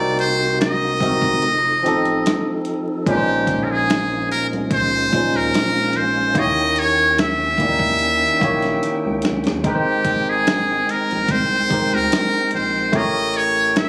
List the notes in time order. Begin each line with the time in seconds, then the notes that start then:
Already playing: C2 C3 A#3 C4 D#4 F#4 A#4 D5
0.19 C5, closed hi-hat
0.61 D#5, snare, closed hi-hat
1.00 C2 C3 C4 D#4 F#4, kick, closed hi-hat
1.05 A#4
1.22 kick, closed hi-hat
1.42 F1 F3 A4, closed hi-hat
1.83 A1 F3 C4 D#4 G4, closed hi-hat
1.87 A4
2.05 closed hi-hat
2.26 snare, closed hi-hat
2.65 closed hi-hat
3.06 A#1 A#2 F3 G#3 A#3 C#4 D#4 G4, kick, closed hi-hat
3.11 B4
3.17 C5
3.47 kick, closed hi-hat
3.64 A#4
3.71 G#4
3.90 snare, closed hi-hat
4.31 C2 A#4, closed hi-hat
4.53 C2, closed hi-hat
4.71 C#2 C5, kick, closed hi-hat
5.11 A#2 F3 G#3 C#4 D#4, kick, closed hi-hat
5.16 C5
5.34 D#2 A#4, closed hi-hat
5.54 snare, closed hi-hat
5.93 A#1 C5, closed hi-hat
6.34 D#2 D#3 A#3 E4 G4 G5, kick, closed hi-hat
6.39 C#5 D#5
6.76 C#5, closed hi-hat
6.99 closed hi-hat
7.18 E5, snare, closed hi-hat
7.58 D#2 D#3 A#3 E4 G4, kick, closed hi-hat
7.62 D5
7.69 D#4
7.79 kick
7.99 closed hi-hat
8.40 A#1 D#3 A#3 E4 G4, kick, closed hi-hat
8.44 C#5
8.62 snare, closed hi-hat
8.83 closed hi-hat
9.06 C#2
9.22 C#2, snare, closed hi-hat
9.44 D#2, snare, closed hi-hat
9.63 G#1 G#3 C4 D#4 G4 A#4 G5, kick, closed hi-hat
9.68 B4
9.75 C5
10.05 kick, closed hi-hat
10.30 G#4
10.47 snare, closed hi-hat
10.89 A#1 A#4, closed hi-hat
11.11 A#1, closed hi-hat
11.28 C2 C5, kick, closed hi-hat
11.69 G#3 D#4 G4 A#4, kick, closed hi-hat
11.74 C5
11.92 D2 A#4, closed hi-hat
12.12 snare, closed hi-hat
12.51 A#1 C5, closed hi-hat
12.92 A1 A3 E4 G4 A#4, kick, closed hi-hat
12.96 C#5 D#5
13.34 C#5, closed hi-hat
13.76 E5, snare, closed hi-hat